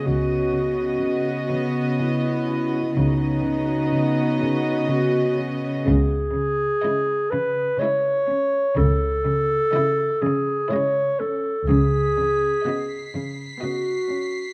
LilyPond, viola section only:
\new Staff \with { instrumentName = "Viola section" } { \time 3/4 \key b \mixolydian \tempo 4 = 62 <b fis'>2. | <b fis'>2. | r4 <gis e'>4 <gis e'>4 | r4 <e e'>4 <gis e'>4 |
r4 <b fis'>4 <b fis'>4 | }